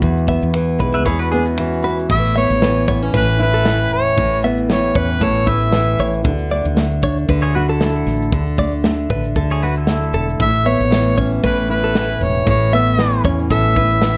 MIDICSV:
0, 0, Header, 1, 7, 480
1, 0, Start_track
1, 0, Key_signature, 3, "major"
1, 0, Tempo, 518583
1, 23, Time_signature, 4, 2, 24, 8
1, 13119, End_track
2, 0, Start_track
2, 0, Title_t, "Harmonica"
2, 0, Program_c, 0, 22
2, 1952, Note_on_c, 0, 76, 97
2, 2172, Note_off_c, 0, 76, 0
2, 2196, Note_on_c, 0, 73, 93
2, 2638, Note_off_c, 0, 73, 0
2, 2928, Note_on_c, 0, 71, 90
2, 3141, Note_off_c, 0, 71, 0
2, 3168, Note_on_c, 0, 71, 87
2, 3604, Note_off_c, 0, 71, 0
2, 3640, Note_on_c, 0, 73, 100
2, 4080, Note_off_c, 0, 73, 0
2, 4369, Note_on_c, 0, 73, 91
2, 4608, Note_on_c, 0, 71, 86
2, 4622, Note_off_c, 0, 73, 0
2, 4843, Note_on_c, 0, 73, 98
2, 4857, Note_off_c, 0, 71, 0
2, 5082, Note_on_c, 0, 76, 93
2, 5096, Note_off_c, 0, 73, 0
2, 5554, Note_off_c, 0, 76, 0
2, 9641, Note_on_c, 0, 76, 111
2, 9877, Note_on_c, 0, 73, 99
2, 9890, Note_off_c, 0, 76, 0
2, 10350, Note_off_c, 0, 73, 0
2, 10601, Note_on_c, 0, 71, 81
2, 10815, Note_off_c, 0, 71, 0
2, 10835, Note_on_c, 0, 71, 80
2, 11323, Note_on_c, 0, 73, 88
2, 11337, Note_off_c, 0, 71, 0
2, 11552, Note_off_c, 0, 73, 0
2, 11566, Note_on_c, 0, 73, 97
2, 11778, Note_off_c, 0, 73, 0
2, 11799, Note_on_c, 0, 76, 91
2, 12237, Note_off_c, 0, 76, 0
2, 12509, Note_on_c, 0, 76, 112
2, 13119, Note_off_c, 0, 76, 0
2, 13119, End_track
3, 0, Start_track
3, 0, Title_t, "Clean electric guitar"
3, 0, Program_c, 1, 27
3, 265, Note_on_c, 1, 76, 68
3, 390, Note_off_c, 1, 76, 0
3, 741, Note_on_c, 1, 71, 74
3, 868, Note_off_c, 1, 71, 0
3, 984, Note_on_c, 1, 71, 76
3, 1213, Note_off_c, 1, 71, 0
3, 1219, Note_on_c, 1, 68, 75
3, 1347, Note_off_c, 1, 68, 0
3, 1705, Note_on_c, 1, 71, 80
3, 1830, Note_off_c, 1, 71, 0
3, 2181, Note_on_c, 1, 76, 67
3, 2309, Note_off_c, 1, 76, 0
3, 2667, Note_on_c, 1, 73, 75
3, 2792, Note_off_c, 1, 73, 0
3, 2906, Note_on_c, 1, 71, 79
3, 3031, Note_off_c, 1, 71, 0
3, 3277, Note_on_c, 1, 69, 66
3, 3505, Note_off_c, 1, 69, 0
3, 4111, Note_on_c, 1, 76, 73
3, 4234, Note_off_c, 1, 76, 0
3, 4592, Note_on_c, 1, 73, 77
3, 4714, Note_off_c, 1, 73, 0
3, 4832, Note_on_c, 1, 69, 80
3, 5073, Note_off_c, 1, 69, 0
3, 5073, Note_on_c, 1, 71, 82
3, 5195, Note_off_c, 1, 71, 0
3, 5553, Note_on_c, 1, 73, 80
3, 5675, Note_off_c, 1, 73, 0
3, 6029, Note_on_c, 1, 74, 68
3, 6153, Note_off_c, 1, 74, 0
3, 6512, Note_on_c, 1, 73, 76
3, 6634, Note_off_c, 1, 73, 0
3, 6754, Note_on_c, 1, 71, 87
3, 6875, Note_off_c, 1, 71, 0
3, 7122, Note_on_c, 1, 69, 72
3, 7348, Note_off_c, 1, 69, 0
3, 7950, Note_on_c, 1, 74, 71
3, 8073, Note_off_c, 1, 74, 0
3, 8427, Note_on_c, 1, 71, 79
3, 8551, Note_off_c, 1, 71, 0
3, 8667, Note_on_c, 1, 69, 76
3, 8907, Note_off_c, 1, 69, 0
3, 8907, Note_on_c, 1, 71, 70
3, 9031, Note_off_c, 1, 71, 0
3, 9387, Note_on_c, 1, 69, 76
3, 9511, Note_off_c, 1, 69, 0
3, 9868, Note_on_c, 1, 76, 72
3, 9991, Note_off_c, 1, 76, 0
3, 10345, Note_on_c, 1, 73, 76
3, 10469, Note_off_c, 1, 73, 0
3, 10587, Note_on_c, 1, 71, 85
3, 10710, Note_off_c, 1, 71, 0
3, 10958, Note_on_c, 1, 69, 69
3, 11184, Note_off_c, 1, 69, 0
3, 11785, Note_on_c, 1, 76, 69
3, 11909, Note_off_c, 1, 76, 0
3, 12267, Note_on_c, 1, 73, 79
3, 12389, Note_off_c, 1, 73, 0
3, 12510, Note_on_c, 1, 69, 78
3, 12733, Note_off_c, 1, 69, 0
3, 12748, Note_on_c, 1, 71, 74
3, 12870, Note_off_c, 1, 71, 0
3, 13119, End_track
4, 0, Start_track
4, 0, Title_t, "Pedal steel guitar"
4, 0, Program_c, 2, 26
4, 871, Note_on_c, 2, 76, 67
4, 877, Note_on_c, 2, 71, 56
4, 971, Note_off_c, 2, 71, 0
4, 975, Note_on_c, 2, 73, 75
4, 976, Note_off_c, 2, 76, 0
4, 980, Note_on_c, 2, 68, 63
4, 1103, Note_on_c, 2, 71, 77
4, 1106, Note_off_c, 2, 68, 0
4, 1106, Note_off_c, 2, 73, 0
4, 1110, Note_on_c, 2, 66, 66
4, 1212, Note_off_c, 2, 71, 0
4, 1216, Note_off_c, 2, 66, 0
4, 1217, Note_on_c, 2, 68, 82
4, 1224, Note_on_c, 2, 62, 66
4, 1346, Note_off_c, 2, 68, 0
4, 1348, Note_off_c, 2, 62, 0
4, 6868, Note_on_c, 2, 73, 77
4, 6874, Note_on_c, 2, 68, 64
4, 6975, Note_off_c, 2, 73, 0
4, 6978, Note_off_c, 2, 68, 0
4, 6987, Note_on_c, 2, 66, 75
4, 6989, Note_on_c, 2, 71, 81
4, 7112, Note_off_c, 2, 66, 0
4, 7112, Note_off_c, 2, 71, 0
4, 7120, Note_on_c, 2, 69, 83
4, 7121, Note_on_c, 2, 64, 69
4, 7802, Note_off_c, 2, 69, 0
4, 7803, Note_off_c, 2, 64, 0
4, 8806, Note_on_c, 2, 73, 71
4, 8810, Note_on_c, 2, 68, 64
4, 8904, Note_off_c, 2, 73, 0
4, 8906, Note_off_c, 2, 68, 0
4, 8913, Note_on_c, 2, 71, 78
4, 8920, Note_on_c, 2, 66, 72
4, 9034, Note_off_c, 2, 71, 0
4, 9038, Note_off_c, 2, 66, 0
4, 9049, Note_on_c, 2, 64, 67
4, 9050, Note_on_c, 2, 69, 76
4, 9726, Note_off_c, 2, 69, 0
4, 9727, Note_off_c, 2, 64, 0
4, 13119, End_track
5, 0, Start_track
5, 0, Title_t, "Nylon-string guitar"
5, 0, Program_c, 3, 24
5, 0, Note_on_c, 3, 52, 62
5, 0, Note_on_c, 3, 56, 52
5, 0, Note_on_c, 3, 59, 57
5, 0, Note_on_c, 3, 66, 59
5, 25, Note_on_c, 3, 40, 79
5, 262, Note_off_c, 3, 59, 0
5, 266, Note_on_c, 3, 59, 58
5, 504, Note_off_c, 3, 52, 0
5, 508, Note_on_c, 3, 52, 66
5, 731, Note_off_c, 3, 56, 0
5, 742, Note_on_c, 3, 56, 52
5, 980, Note_off_c, 3, 40, 0
5, 991, Note_on_c, 3, 40, 70
5, 1232, Note_off_c, 3, 59, 0
5, 1236, Note_on_c, 3, 59, 55
5, 1467, Note_off_c, 3, 52, 0
5, 1471, Note_on_c, 3, 52, 62
5, 1690, Note_off_c, 3, 66, 0
5, 1701, Note_on_c, 3, 66, 58
5, 1943, Note_on_c, 3, 45, 81
5, 1996, Note_off_c, 3, 66, 0
5, 1997, Note_off_c, 3, 56, 0
5, 2001, Note_off_c, 3, 40, 0
5, 2188, Note_off_c, 3, 59, 0
5, 2188, Note_on_c, 3, 59, 62
5, 2424, Note_off_c, 3, 52, 0
5, 2428, Note_on_c, 3, 52, 66
5, 2655, Note_off_c, 3, 59, 0
5, 2667, Note_on_c, 3, 59, 58
5, 2800, Note_off_c, 3, 59, 0
5, 2800, Note_on_c, 3, 61, 50
5, 2893, Note_off_c, 3, 45, 0
5, 2904, Note_on_c, 3, 45, 77
5, 3141, Note_on_c, 3, 64, 66
5, 3371, Note_off_c, 3, 52, 0
5, 3382, Note_on_c, 3, 52, 63
5, 3859, Note_off_c, 3, 45, 0
5, 3870, Note_on_c, 3, 45, 85
5, 4106, Note_on_c, 3, 59, 62
5, 4338, Note_off_c, 3, 52, 0
5, 4349, Note_on_c, 3, 52, 65
5, 4576, Note_off_c, 3, 61, 0
5, 4587, Note_on_c, 3, 61, 57
5, 4809, Note_off_c, 3, 45, 0
5, 4820, Note_on_c, 3, 45, 81
5, 5048, Note_off_c, 3, 64, 0
5, 5059, Note_on_c, 3, 64, 69
5, 5286, Note_off_c, 3, 52, 0
5, 5297, Note_on_c, 3, 52, 71
5, 5775, Note_off_c, 3, 52, 0
5, 5779, Note_on_c, 3, 50, 90
5, 5835, Note_off_c, 3, 45, 0
5, 5835, Note_off_c, 3, 64, 0
5, 5838, Note_off_c, 3, 59, 0
5, 5839, Note_off_c, 3, 61, 0
5, 6028, Note_on_c, 3, 57, 61
5, 6257, Note_off_c, 3, 57, 0
5, 6261, Note_on_c, 3, 57, 67
5, 6510, Note_on_c, 3, 62, 54
5, 6733, Note_off_c, 3, 50, 0
5, 6744, Note_on_c, 3, 50, 77
5, 6996, Note_on_c, 3, 66, 63
5, 7229, Note_off_c, 3, 57, 0
5, 7232, Note_on_c, 3, 57, 68
5, 7700, Note_off_c, 3, 50, 0
5, 7711, Note_on_c, 3, 50, 85
5, 7948, Note_off_c, 3, 57, 0
5, 7952, Note_on_c, 3, 57, 60
5, 8190, Note_off_c, 3, 57, 0
5, 8194, Note_on_c, 3, 57, 67
5, 8414, Note_off_c, 3, 62, 0
5, 8425, Note_on_c, 3, 62, 56
5, 8664, Note_off_c, 3, 50, 0
5, 8675, Note_on_c, 3, 50, 74
5, 8905, Note_off_c, 3, 66, 0
5, 8916, Note_on_c, 3, 66, 60
5, 9146, Note_off_c, 3, 57, 0
5, 9150, Note_on_c, 3, 57, 64
5, 9623, Note_on_c, 3, 45, 81
5, 9677, Note_off_c, 3, 62, 0
5, 9682, Note_off_c, 3, 50, 0
5, 9683, Note_off_c, 3, 66, 0
5, 9860, Note_off_c, 3, 57, 0
5, 9863, Note_on_c, 3, 59, 61
5, 10096, Note_on_c, 3, 52, 67
5, 10337, Note_on_c, 3, 61, 53
5, 10572, Note_off_c, 3, 45, 0
5, 10583, Note_on_c, 3, 45, 80
5, 10826, Note_on_c, 3, 64, 67
5, 11059, Note_off_c, 3, 52, 0
5, 11062, Note_on_c, 3, 52, 64
5, 11529, Note_off_c, 3, 45, 0
5, 11541, Note_on_c, 3, 45, 90
5, 11778, Note_off_c, 3, 59, 0
5, 11782, Note_on_c, 3, 59, 63
5, 12020, Note_off_c, 3, 52, 0
5, 12024, Note_on_c, 3, 52, 69
5, 12251, Note_off_c, 3, 61, 0
5, 12262, Note_on_c, 3, 61, 55
5, 12495, Note_off_c, 3, 45, 0
5, 12506, Note_on_c, 3, 45, 76
5, 12742, Note_off_c, 3, 64, 0
5, 12745, Note_on_c, 3, 64, 65
5, 12979, Note_off_c, 3, 52, 0
5, 12983, Note_on_c, 3, 52, 64
5, 13119, Note_off_c, 3, 45, 0
5, 13119, Note_off_c, 3, 52, 0
5, 13119, Note_off_c, 3, 59, 0
5, 13119, Note_off_c, 3, 61, 0
5, 13119, Note_off_c, 3, 64, 0
5, 13119, End_track
6, 0, Start_track
6, 0, Title_t, "Fretless electric bass"
6, 0, Program_c, 4, 35
6, 18, Note_on_c, 4, 40, 96
6, 363, Note_off_c, 4, 40, 0
6, 395, Note_on_c, 4, 40, 91
6, 716, Note_off_c, 4, 40, 0
6, 738, Note_on_c, 4, 35, 77
6, 975, Note_off_c, 4, 35, 0
6, 975, Note_on_c, 4, 40, 97
6, 1904, Note_off_c, 4, 40, 0
6, 1940, Note_on_c, 4, 33, 98
6, 2285, Note_off_c, 4, 33, 0
6, 2314, Note_on_c, 4, 33, 86
6, 2874, Note_off_c, 4, 33, 0
6, 2904, Note_on_c, 4, 33, 96
6, 3624, Note_off_c, 4, 33, 0
6, 3624, Note_on_c, 4, 28, 89
6, 3846, Note_off_c, 4, 28, 0
6, 3864, Note_on_c, 4, 33, 98
6, 4549, Note_off_c, 4, 33, 0
6, 4583, Note_on_c, 4, 40, 81
6, 4805, Note_off_c, 4, 40, 0
6, 4823, Note_on_c, 4, 33, 107
6, 5508, Note_off_c, 4, 33, 0
6, 5547, Note_on_c, 4, 33, 95
6, 5767, Note_off_c, 4, 33, 0
6, 5781, Note_on_c, 4, 38, 105
6, 6125, Note_off_c, 4, 38, 0
6, 6158, Note_on_c, 4, 38, 87
6, 6716, Note_off_c, 4, 38, 0
6, 6743, Note_on_c, 4, 38, 103
6, 7428, Note_off_c, 4, 38, 0
6, 7466, Note_on_c, 4, 33, 93
6, 7686, Note_off_c, 4, 33, 0
6, 7702, Note_on_c, 4, 38, 95
6, 8387, Note_off_c, 4, 38, 0
6, 8421, Note_on_c, 4, 33, 85
6, 8644, Note_off_c, 4, 33, 0
6, 8661, Note_on_c, 4, 38, 90
6, 9382, Note_on_c, 4, 28, 89
6, 9396, Note_off_c, 4, 38, 0
6, 9604, Note_off_c, 4, 28, 0
6, 9624, Note_on_c, 4, 33, 107
6, 9966, Note_off_c, 4, 33, 0
6, 10000, Note_on_c, 4, 33, 84
6, 10556, Note_off_c, 4, 33, 0
6, 10585, Note_on_c, 4, 33, 103
6, 11268, Note_off_c, 4, 33, 0
6, 11299, Note_on_c, 4, 28, 86
6, 11521, Note_off_c, 4, 28, 0
6, 11539, Note_on_c, 4, 33, 100
6, 12224, Note_off_c, 4, 33, 0
6, 12258, Note_on_c, 4, 40, 87
6, 12480, Note_off_c, 4, 40, 0
6, 12497, Note_on_c, 4, 33, 101
6, 13119, Note_off_c, 4, 33, 0
6, 13119, End_track
7, 0, Start_track
7, 0, Title_t, "Drums"
7, 16, Note_on_c, 9, 82, 64
7, 19, Note_on_c, 9, 36, 98
7, 109, Note_off_c, 9, 82, 0
7, 111, Note_off_c, 9, 36, 0
7, 157, Note_on_c, 9, 82, 46
7, 250, Note_off_c, 9, 82, 0
7, 260, Note_on_c, 9, 36, 83
7, 353, Note_off_c, 9, 36, 0
7, 387, Note_on_c, 9, 82, 51
7, 479, Note_off_c, 9, 82, 0
7, 498, Note_on_c, 9, 82, 64
7, 499, Note_on_c, 9, 26, 101
7, 591, Note_off_c, 9, 82, 0
7, 592, Note_off_c, 9, 26, 0
7, 628, Note_on_c, 9, 82, 45
7, 720, Note_off_c, 9, 82, 0
7, 740, Note_on_c, 9, 36, 88
7, 833, Note_off_c, 9, 36, 0
7, 875, Note_on_c, 9, 82, 42
7, 967, Note_off_c, 9, 82, 0
7, 976, Note_on_c, 9, 82, 68
7, 979, Note_on_c, 9, 36, 86
7, 1069, Note_off_c, 9, 82, 0
7, 1071, Note_off_c, 9, 36, 0
7, 1111, Note_on_c, 9, 82, 38
7, 1203, Note_off_c, 9, 82, 0
7, 1224, Note_on_c, 9, 82, 50
7, 1316, Note_off_c, 9, 82, 0
7, 1348, Note_on_c, 9, 82, 57
7, 1441, Note_off_c, 9, 82, 0
7, 1456, Note_on_c, 9, 82, 63
7, 1461, Note_on_c, 9, 26, 107
7, 1548, Note_off_c, 9, 82, 0
7, 1553, Note_off_c, 9, 26, 0
7, 1599, Note_on_c, 9, 82, 44
7, 1691, Note_off_c, 9, 82, 0
7, 1704, Note_on_c, 9, 26, 36
7, 1796, Note_off_c, 9, 26, 0
7, 1841, Note_on_c, 9, 82, 50
7, 1934, Note_off_c, 9, 82, 0
7, 1942, Note_on_c, 9, 36, 104
7, 1943, Note_on_c, 9, 49, 95
7, 2034, Note_off_c, 9, 36, 0
7, 2036, Note_off_c, 9, 49, 0
7, 2078, Note_on_c, 9, 82, 49
7, 2170, Note_off_c, 9, 82, 0
7, 2312, Note_on_c, 9, 82, 52
7, 2404, Note_off_c, 9, 82, 0
7, 2426, Note_on_c, 9, 38, 106
7, 2426, Note_on_c, 9, 82, 64
7, 2518, Note_off_c, 9, 82, 0
7, 2519, Note_off_c, 9, 38, 0
7, 2562, Note_on_c, 9, 82, 46
7, 2654, Note_off_c, 9, 82, 0
7, 2666, Note_on_c, 9, 36, 88
7, 2672, Note_on_c, 9, 82, 57
7, 2759, Note_off_c, 9, 36, 0
7, 2765, Note_off_c, 9, 82, 0
7, 2801, Note_on_c, 9, 82, 46
7, 2893, Note_off_c, 9, 82, 0
7, 2904, Note_on_c, 9, 82, 66
7, 2906, Note_on_c, 9, 36, 94
7, 2997, Note_off_c, 9, 82, 0
7, 2998, Note_off_c, 9, 36, 0
7, 3044, Note_on_c, 9, 82, 40
7, 3136, Note_off_c, 9, 82, 0
7, 3278, Note_on_c, 9, 82, 57
7, 3370, Note_off_c, 9, 82, 0
7, 3378, Note_on_c, 9, 82, 65
7, 3383, Note_on_c, 9, 38, 101
7, 3470, Note_off_c, 9, 82, 0
7, 3475, Note_off_c, 9, 38, 0
7, 3525, Note_on_c, 9, 82, 48
7, 3618, Note_off_c, 9, 82, 0
7, 3768, Note_on_c, 9, 82, 52
7, 3861, Note_off_c, 9, 82, 0
7, 3864, Note_on_c, 9, 82, 67
7, 3866, Note_on_c, 9, 36, 114
7, 3957, Note_off_c, 9, 82, 0
7, 3959, Note_off_c, 9, 36, 0
7, 4002, Note_on_c, 9, 82, 51
7, 4094, Note_off_c, 9, 82, 0
7, 4115, Note_on_c, 9, 82, 53
7, 4207, Note_off_c, 9, 82, 0
7, 4236, Note_on_c, 9, 82, 55
7, 4328, Note_off_c, 9, 82, 0
7, 4346, Note_on_c, 9, 82, 63
7, 4347, Note_on_c, 9, 38, 108
7, 4439, Note_off_c, 9, 82, 0
7, 4440, Note_off_c, 9, 38, 0
7, 4478, Note_on_c, 9, 82, 42
7, 4571, Note_off_c, 9, 82, 0
7, 4585, Note_on_c, 9, 36, 92
7, 4678, Note_off_c, 9, 36, 0
7, 4715, Note_on_c, 9, 82, 46
7, 4808, Note_off_c, 9, 82, 0
7, 4820, Note_on_c, 9, 82, 66
7, 4825, Note_on_c, 9, 36, 87
7, 4913, Note_off_c, 9, 82, 0
7, 4917, Note_off_c, 9, 36, 0
7, 4954, Note_on_c, 9, 82, 37
7, 5047, Note_off_c, 9, 82, 0
7, 5063, Note_on_c, 9, 36, 91
7, 5156, Note_off_c, 9, 36, 0
7, 5190, Note_on_c, 9, 82, 63
7, 5283, Note_off_c, 9, 82, 0
7, 5294, Note_on_c, 9, 82, 65
7, 5299, Note_on_c, 9, 38, 106
7, 5387, Note_off_c, 9, 82, 0
7, 5392, Note_off_c, 9, 38, 0
7, 5433, Note_on_c, 9, 82, 48
7, 5526, Note_off_c, 9, 82, 0
7, 5680, Note_on_c, 9, 82, 51
7, 5773, Note_off_c, 9, 82, 0
7, 5777, Note_on_c, 9, 82, 71
7, 5784, Note_on_c, 9, 36, 111
7, 5869, Note_off_c, 9, 82, 0
7, 5876, Note_off_c, 9, 36, 0
7, 5912, Note_on_c, 9, 82, 49
7, 6004, Note_off_c, 9, 82, 0
7, 6026, Note_on_c, 9, 82, 57
7, 6118, Note_off_c, 9, 82, 0
7, 6149, Note_on_c, 9, 82, 51
7, 6242, Note_off_c, 9, 82, 0
7, 6265, Note_on_c, 9, 82, 63
7, 6266, Note_on_c, 9, 38, 104
7, 6357, Note_off_c, 9, 82, 0
7, 6358, Note_off_c, 9, 38, 0
7, 6400, Note_on_c, 9, 82, 45
7, 6492, Note_off_c, 9, 82, 0
7, 6507, Note_on_c, 9, 36, 93
7, 6599, Note_off_c, 9, 36, 0
7, 6637, Note_on_c, 9, 82, 46
7, 6730, Note_off_c, 9, 82, 0
7, 6746, Note_on_c, 9, 36, 94
7, 6746, Note_on_c, 9, 82, 71
7, 6838, Note_off_c, 9, 36, 0
7, 6838, Note_off_c, 9, 82, 0
7, 6882, Note_on_c, 9, 82, 38
7, 6974, Note_off_c, 9, 82, 0
7, 7118, Note_on_c, 9, 82, 58
7, 7210, Note_off_c, 9, 82, 0
7, 7221, Note_on_c, 9, 82, 63
7, 7226, Note_on_c, 9, 38, 110
7, 7314, Note_off_c, 9, 82, 0
7, 7319, Note_off_c, 9, 38, 0
7, 7361, Note_on_c, 9, 82, 49
7, 7454, Note_off_c, 9, 82, 0
7, 7468, Note_on_c, 9, 38, 38
7, 7561, Note_off_c, 9, 38, 0
7, 7608, Note_on_c, 9, 82, 51
7, 7701, Note_off_c, 9, 82, 0
7, 7705, Note_on_c, 9, 36, 114
7, 7705, Note_on_c, 9, 82, 68
7, 7798, Note_off_c, 9, 36, 0
7, 7798, Note_off_c, 9, 82, 0
7, 7838, Note_on_c, 9, 82, 53
7, 7931, Note_off_c, 9, 82, 0
7, 7944, Note_on_c, 9, 36, 87
7, 8036, Note_off_c, 9, 36, 0
7, 8067, Note_on_c, 9, 82, 52
7, 8160, Note_off_c, 9, 82, 0
7, 8182, Note_on_c, 9, 38, 107
7, 8182, Note_on_c, 9, 82, 64
7, 8274, Note_off_c, 9, 82, 0
7, 8275, Note_off_c, 9, 38, 0
7, 8312, Note_on_c, 9, 82, 47
7, 8405, Note_off_c, 9, 82, 0
7, 8424, Note_on_c, 9, 36, 87
7, 8517, Note_off_c, 9, 36, 0
7, 8555, Note_on_c, 9, 82, 48
7, 8647, Note_off_c, 9, 82, 0
7, 8660, Note_on_c, 9, 82, 69
7, 8663, Note_on_c, 9, 36, 87
7, 8752, Note_off_c, 9, 82, 0
7, 8756, Note_off_c, 9, 36, 0
7, 8795, Note_on_c, 9, 82, 39
7, 8888, Note_off_c, 9, 82, 0
7, 9027, Note_on_c, 9, 82, 59
7, 9120, Note_off_c, 9, 82, 0
7, 9131, Note_on_c, 9, 82, 63
7, 9136, Note_on_c, 9, 38, 106
7, 9224, Note_off_c, 9, 82, 0
7, 9229, Note_off_c, 9, 38, 0
7, 9275, Note_on_c, 9, 82, 49
7, 9368, Note_off_c, 9, 82, 0
7, 9523, Note_on_c, 9, 82, 52
7, 9616, Note_off_c, 9, 82, 0
7, 9625, Note_on_c, 9, 36, 113
7, 9626, Note_on_c, 9, 82, 70
7, 9718, Note_off_c, 9, 36, 0
7, 9719, Note_off_c, 9, 82, 0
7, 9758, Note_on_c, 9, 82, 51
7, 9851, Note_off_c, 9, 82, 0
7, 9872, Note_on_c, 9, 82, 58
7, 9965, Note_off_c, 9, 82, 0
7, 9992, Note_on_c, 9, 82, 52
7, 10085, Note_off_c, 9, 82, 0
7, 10110, Note_on_c, 9, 82, 70
7, 10111, Note_on_c, 9, 38, 114
7, 10203, Note_off_c, 9, 82, 0
7, 10204, Note_off_c, 9, 38, 0
7, 10242, Note_on_c, 9, 82, 46
7, 10335, Note_off_c, 9, 82, 0
7, 10347, Note_on_c, 9, 36, 91
7, 10440, Note_off_c, 9, 36, 0
7, 10484, Note_on_c, 9, 82, 48
7, 10577, Note_off_c, 9, 82, 0
7, 10585, Note_on_c, 9, 36, 97
7, 10587, Note_on_c, 9, 82, 67
7, 10678, Note_off_c, 9, 36, 0
7, 10680, Note_off_c, 9, 82, 0
7, 10724, Note_on_c, 9, 82, 40
7, 10817, Note_off_c, 9, 82, 0
7, 10955, Note_on_c, 9, 82, 59
7, 11048, Note_off_c, 9, 82, 0
7, 11058, Note_on_c, 9, 82, 68
7, 11063, Note_on_c, 9, 38, 106
7, 11151, Note_off_c, 9, 82, 0
7, 11156, Note_off_c, 9, 38, 0
7, 11194, Note_on_c, 9, 82, 48
7, 11287, Note_off_c, 9, 82, 0
7, 11299, Note_on_c, 9, 82, 49
7, 11305, Note_on_c, 9, 38, 36
7, 11392, Note_off_c, 9, 82, 0
7, 11398, Note_off_c, 9, 38, 0
7, 11436, Note_on_c, 9, 82, 52
7, 11529, Note_off_c, 9, 82, 0
7, 11536, Note_on_c, 9, 82, 70
7, 11540, Note_on_c, 9, 36, 117
7, 11628, Note_off_c, 9, 82, 0
7, 11633, Note_off_c, 9, 36, 0
7, 11676, Note_on_c, 9, 82, 52
7, 11769, Note_off_c, 9, 82, 0
7, 11783, Note_on_c, 9, 82, 55
7, 11876, Note_off_c, 9, 82, 0
7, 11909, Note_on_c, 9, 82, 53
7, 12002, Note_off_c, 9, 82, 0
7, 12019, Note_on_c, 9, 82, 70
7, 12020, Note_on_c, 9, 38, 109
7, 12112, Note_off_c, 9, 82, 0
7, 12113, Note_off_c, 9, 38, 0
7, 12154, Note_on_c, 9, 82, 47
7, 12247, Note_off_c, 9, 82, 0
7, 12262, Note_on_c, 9, 36, 101
7, 12354, Note_off_c, 9, 36, 0
7, 12392, Note_on_c, 9, 82, 44
7, 12484, Note_off_c, 9, 82, 0
7, 12498, Note_on_c, 9, 82, 68
7, 12500, Note_on_c, 9, 36, 95
7, 12590, Note_off_c, 9, 82, 0
7, 12593, Note_off_c, 9, 36, 0
7, 12634, Note_on_c, 9, 82, 40
7, 12727, Note_off_c, 9, 82, 0
7, 12740, Note_on_c, 9, 36, 89
7, 12832, Note_off_c, 9, 36, 0
7, 12865, Note_on_c, 9, 82, 60
7, 12958, Note_off_c, 9, 82, 0
7, 12968, Note_on_c, 9, 82, 65
7, 12973, Note_on_c, 9, 38, 106
7, 13061, Note_off_c, 9, 82, 0
7, 13066, Note_off_c, 9, 38, 0
7, 13119, End_track
0, 0, End_of_file